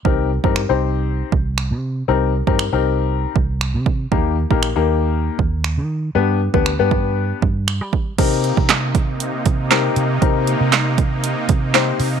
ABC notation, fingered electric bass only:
X:1
M:4/4
L:1/16
Q:1/4=118
K:Cm
V:1 name="Fingered electric bass" clef=bass
C,,3 G,,2 C,,4- C,, C,,3 C,3 | C,,3 G,,2 C,,4- C,, C,,3 C,3 | E,,3 B,,,2 E,,4- E,, E,,3 E,3 | G,,3 D,,2 G,,4- G,, G,,3 G,3 |
C,3 C,6- C, C,4 C,2 | C,3 C,6- C, C,4 C,2 |]